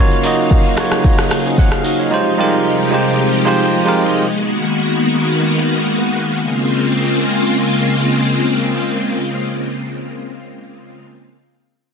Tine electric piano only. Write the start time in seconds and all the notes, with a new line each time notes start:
Already playing: A#3 D#4
0.00 F4 F#4 C#5
0.23 A#3 D#4 F4 F#4 D#5
0.77 A#3 D#4 F4 F#4 C#5
1.46 C5 G#5
1.59 A#4 F#5
1.73 G#4 F5
1.85 F#4 D#5
1.99 F4 C#5
2.10 G#3 D#4 F4 G4 C5
2.37 G3 D#4 F4 G4 A#4
2.44 G#3
2.91 G#3 D#4 F4 G4 C5
3.44 G#3 D#4 F4 G4 C5
3.85 G#3 D#4 F4 G4 A#4